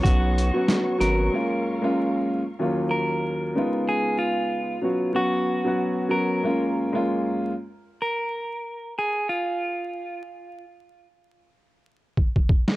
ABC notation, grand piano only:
X:1
M:4/4
L:1/16
Q:"Swing 16ths" 1/4=94
K:Gb
V:1 name="Grand piano"
[^F,=B,^C^F]3 [F,B,CF]3 [F,B,CF]2 [G,,A,_B,D=F]3 [G,,A,B,DF]4 z | [E,,G,B,DF]6 [D,A,CEF]6- [D,A,CEF] z [^F,=B,^C^F]2 | [^F,=B,^C^F]3 [F,B,CF]3 [F,B,CF]2 [G,,A,_B,D=F]3 [G,,A,B,DF]4 z | z16 |
z16 |]